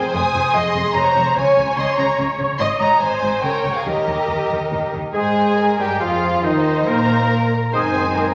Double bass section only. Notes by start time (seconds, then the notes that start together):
0.15 F1
0.34 F1
0.54 F1
0.75 F1
0.96 F1
1.16 F1
1.36 C#2
1.58 C#2
1.77 C#2
1.97 C#2
2.18 C#2
2.39 C#2
2.59 G#1
2.80 G#1
3.01 G#1
3.22 G#1
3.43 C#2
3.64 C#2
3.85 D#2
4.07 D#2
4.28 D#2
4.50 D#2
4.72 D#2
4.93 D#2
5.14 G#2
5.79 G2
6.01 F2
6.44 D#2
6.88 A#2
7.73 F#1